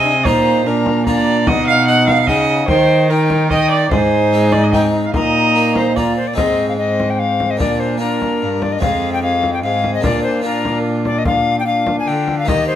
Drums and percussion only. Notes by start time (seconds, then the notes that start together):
0.25 frame drum
0.86 frame drum
1.07 frame drum
1.47 frame drum
2.08 frame drum
2.27 frame drum
2.68 frame drum
3.30 frame drum
3.50 frame drum
3.91 frame drum
4.52 frame drum
4.73 frame drum
5.14 frame drum
5.75 frame drum
5.97 frame drum
6.38 frame drum
7.00 frame drum
7.40 frame drum
7.60 frame drum
8.22 frame drum
8.62 frame drum
8.82 frame drum
9.43 frame drum
9.84 frame drum
10.04 frame drum
10.65 frame drum
11.05 frame drum
11.25 frame drum
11.87 frame drum
12.28 frame drum
12.48 frame drum